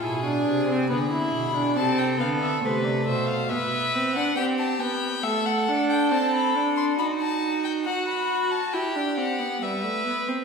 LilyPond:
<<
  \new Staff \with { instrumentName = "Violin" } { \time 4/4 \key e \phrygian \tempo 4 = 69 gis''4 b''4 a''16 g''16 f''16 e''16 c''16 d''16 e''16 f''16 | e''8. fis''16 g''16 a''16 g''8 e''16 fis''8 g''16 a''16 b''8 c'''16 | b''16 a''8 g''16 fis''16 b''8 a''16 g''8 fis''8 e''4 | }
  \new Staff \with { instrumentName = "Violin" } { \time 4/4 \key e \phrygian gis'4 gis'4 a'4 b'8 c''8 | b'4 g'4 a'2 | fis'2 g'4 b'4 | }
  \new Staff \with { instrumentName = "Viola" } { \time 4/4 \key e \phrygian e'16 d'8 c'16 b16 e'8 d'16 c'8 b8 a4 | b8 c'16 d'16 c'8 b8 a8 d'8 c'8 d'8 | dis'4 fis'4 e'16 d'16 c'16 b16 g16 a16 b16 c'16 | }
  \new Staff \with { instrumentName = "Cello" } { \clef bass \time 4/4 \key e \phrygian b,8 c8 d8 b,8 c8 d8 c8 b,8 | r1 | r1 | }
>>